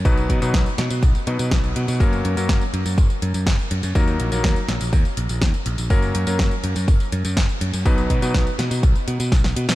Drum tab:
HH |xxxxxxxxxxxxxxxx|xxxxxxxxxxxxxxxx|xxxxxxxxxxxxxxxx|xxxxxxxxxxxxxxxx|
TB |xx-xxx-xxx-xxx-x|xx-xxx-xxx-xxx-x|xx-xxx-xxx-xxx-x|xx-xxx-xxx-xxx-x|
SD |----o-o-----o---|----o-------o---|----o-o-----o---|----o-------o---|
BD |o-o-o---o---o---|o---o---o---o---|o---o---o---o---|o---o---o---o---|

HH |xxxxxxxxxxxxxxxx|
TB |xx-xxx-xxx-xxx-x|
SD |----o-o-----oo-o|
BD |o-o-o---o---o---|